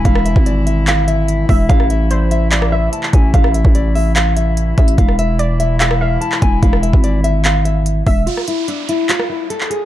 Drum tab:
HH |x-x-x-x-x-x-x-o-|x-x-x-x-x---x-x-|x-x-x-o-x-x-x-xx|x-x-x-x-x---x-x-|
CP |--------x-------|--------x----x--|--------x-------|--------x----x--|
SD |-r--------------|-r-------r------|-r--------------|-r-------r------|
BD |o--o----------o-|o-------------o-|o--o----------o-|o-------------o-|

HH |x-x-x-x-x-x-x-o-|x-x-x-x-x---x-x-|
CP |--------x-------|--------x----x--|
SD |-r--------------|-r-------r------|
BD |o--o----------o-|----------------|